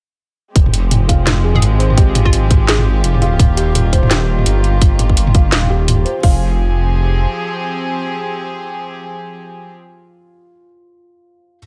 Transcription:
0.55 1.61 F1 medium
0.55 3.37 F3 medium
0.55 3.36 G#3 medium
0.55 3.37 C4 medium
0.55 6.24 F4 medium
0.55 6.19 G4 medium
0.55 kick loud
0.55 closed hi-hat medium
0.66 mid tom medium
0.74 closed hi-hat medium
0.91 closed hi-hat medium
0.91 mid tom medium
1.08 1.43 F4 medium
1.08 kick medium
1.08 closed hi-hat medium
1.27 snare loud
1.27 closed hi-hat medium
1.27 mid tom medium
1.44 1.55 G#4 medium
1.55 1.76 G#4 medium
1.55 mid tom medium
1.62 2.67 G#1 loud
1.62 closed hi-hat medium
1.79 1.91 C5 medium
1.79 closed hi-hat soft
1.90 mid tom medium
1.97 2.67 G4 medium
1.97 kick loud
1.97 closed hi-hat medium
2.15 closed hi-hat medium
2.15 mid tom medium
2.25 2.46 F4 loud
2.25 kick medium
2.33 closed hi-hat medium
2.51 kick loud
2.51 closed hi-hat medium
2.51 mid tom medium
2.68 3.03 G#1 loud
2.68 2.97 G#4 loud
2.68 snare loud
2.68 closed hi-hat medium
2.79 mid tom medium
3.04 3.38 F1 loud
3.04 closed hi-hat medium
3.14 mid tom medium
3.21 3.39 F4 medium
3.21 closed hi-hat soft
3.39 4.45 D#1 loud
3.39 6.20 D#3 medium
3.39 6.20 A#3 medium
3.39 6.20 F4 medium
3.39 kick loud
3.39 closed hi-hat medium
3.39 mid tom medium
3.57 3.68 G4 medium
3.57 closed hi-hat medium
3.75 closed hi-hat medium
3.75 mid tom medium
3.93 4.04 C5 medium
3.93 kick medium
3.93 closed hi-hat medium
4.03 mid tom medium
4.10 4.80 G4 medium
4.10 snare loud
4.10 closed hi-hat medium
4.39 mid tom medium
4.46 5.52 G1 loud
4.46 closed hi-hat medium
4.64 closed hi-hat soft
4.82 kick loud
4.82 closed hi-hat medium
4.99 closed hi-hat medium
4.99 mid tom medium
5.10 kick medium
5.17 closed hi-hat medium
5.27 mid tom medium
5.35 5.69 F4 medium
5.35 kick loud
5.35 closed hi-hat medium
5.52 6.05 D#1 loud
5.52 snare loud
5.52 closed hi-hat medium
5.63 mid tom medium
5.70 5.81 G4 medium
5.88 closed hi-hat medium
5.88 mid tom medium
6.05 6.17 C5 medium
6.05 closed hi-hat soft
6.23 7.26 F1 medium
6.23 9.73 F3 medium
6.23 9.73 C4 medium
6.23 6.40 F4 medium
6.23 9.73 G4 medium
6.23 9.73 G#4 medium
6.23 kick loud
6.23 open hi-hat medium

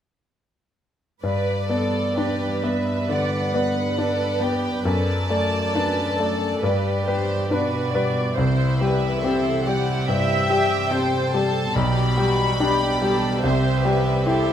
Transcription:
1.23 3.04 G2 soft
1.23 4.81 G2 soft
1.23 1.67 B4 soft
1.23 2.13 D5 soft
1.23 2.60 D5 soft
1.69 2.12 B3 soft
1.69 2.16 A4 soft
1.69 2.17 A4 soft
1.69 2.13 D5 soft
2.16 2.59 D4 soft
2.16 2.64 G4 soft
2.16 3.09 B4 soft
2.16 2.64 B4 soft
2.16 2.59 D5 soft
2.63 3.05 B3 soft
2.63 3.98 B4 soft
2.63 3.05 D5 soft
2.63 3.09 E5 soft
3.09 3.79 D3 soft
3.09 3.53 D5 soft
3.09 4.41 F#5 soft
3.54 3.93 B3 soft
3.54 4.85 B4 soft
3.54 3.93 D5 soft
3.98 4.37 D4 soft
3.98 4.41 A4 soft
3.98 4.84 D5 soft
3.98 4.37 D5 soft
4.40 4.81 B3 soft
4.40 4.85 G4 soft
4.40 4.81 D5 soft
4.40 4.85 G5 soft
4.85 6.60 F#2 soft
4.85 5.30 A4 soft
4.85 5.29 B4 soft
4.85 6.60 D5 soft
4.85 6.64 A5 medium
5.30 5.71 A3 soft
5.30 6.64 A4 soft
5.30 5.71 D5 soft
5.30 5.74 D5 soft
5.75 6.16 D4 soft
5.75 6.20 B4 soft
5.75 6.16 D5 soft
6.19 6.60 A3 soft
6.19 6.63 A4 soft
6.19 6.60 D5 soft
6.63 8.33 G2 soft
6.63 7.49 G2 soft
6.63 7.52 G4 soft
6.63 7.07 B4 soft
6.63 7.08 B4 soft
6.63 7.92 D5 soft
7.08 7.48 G3 soft
7.08 7.52 G4 soft
7.08 7.48 B4 soft
7.08 7.51 C5 soft
7.51 8.38 B2 soft
7.51 7.90 D4 soft
7.51 8.38 F#4 soft
7.51 7.95 B4 soft
7.51 7.91 B4 soft
7.51 8.37 D5 soft
7.94 8.34 G3 soft
7.94 8.34 B4 soft
7.94 8.37 D5 soft
8.37 10.04 C2 soft
8.37 11.75 C3 soft
8.37 10.05 E4 soft
8.37 8.80 C5 soft
8.37 9.63 E5 medium
8.80 9.20 G3 soft
8.80 9.20 G4 soft
8.80 9.23 B4 soft
8.80 9.24 B4 soft
9.23 9.63 C4 soft
9.23 9.63 G4 soft
9.23 9.66 A4 soft
9.23 9.67 C5 soft
9.65 10.05 G3 soft
9.65 10.08 G4 soft
9.65 10.05 G4 soft
9.65 10.08 D5 soft
9.65 10.07 F#5 soft
10.07 10.75 G2 soft
10.07 10.49 E4 soft
10.07 10.92 E5 soft
10.07 11.33 G5 medium
10.49 10.88 G3 soft
10.49 10.91 G4 soft
10.49 10.88 G4 soft
10.91 11.29 C4 soft
10.91 11.30 G4 soft
10.91 11.76 A4 soft
10.91 11.34 C5 soft
11.33 11.72 G3 soft
11.33 11.72 G4 soft
11.33 11.75 A4 soft
11.33 11.75 C5 soft
11.33 11.75 A5 medium
11.75 13.39 B1 soft
11.75 13.40 B2 soft
11.75 12.57 G4 soft
11.75 12.18 G4 soft
11.75 12.59 D5 soft
11.75 13.43 B5 medium
12.18 12.55 G3 soft
12.18 12.59 F#4 soft
12.18 12.55 G4 soft
12.59 12.98 D4 soft
12.59 13.41 G4 soft
12.59 13.02 G4 soft
12.59 12.98 G4 soft
12.59 13.42 D5 soft
13.02 13.40 G3 soft
13.02 13.40 G4 soft
13.02 13.43 A4 soft
13.42 14.53 C2 soft
13.42 14.53 C3 soft
13.42 14.26 G4 soft
13.42 13.84 C5 soft
13.42 13.85 C5 soft
13.42 14.53 E5 medium
13.85 14.22 G3 soft
13.85 14.22 G4 soft
13.85 14.26 B4 soft
13.85 14.27 B4 soft
14.26 14.53 E4 soft
14.26 14.53 G4 soft
14.26 14.53 A4 medium
14.26 14.53 C5 soft

